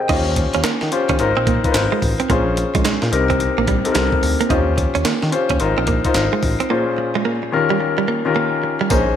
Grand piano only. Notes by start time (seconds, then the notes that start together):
Already playing: G4 G#4 A#4 C5
0.00 D#5 G5
0.09 C#4 F4 G4 C5
0.91 C#4 F4 G4 C5
1.19 D#4 F4 A#4 C5
1.64 D#4 F4 A#4 B4
1.72 C5
2.30 C#4 F4 G#4 C5
3.12 C4 D#4 G4 A#4
3.85 C4 D#4 G4 A4
3.92 A#4
4.49 C#4 F4 G4 C5
5.32 C#4 F4 G4 C5
5.60 D#4 F4 A#4 C5
6.05 D#4 F4 A#4 C5
6.70 A#2 C#4 F4 G#4 C5
7.52 D#3 C#4 F4 G4 A#4
8.25 D#3 C#4 F4 G4 A#4
8.90 C#4 D#4 G#4 C5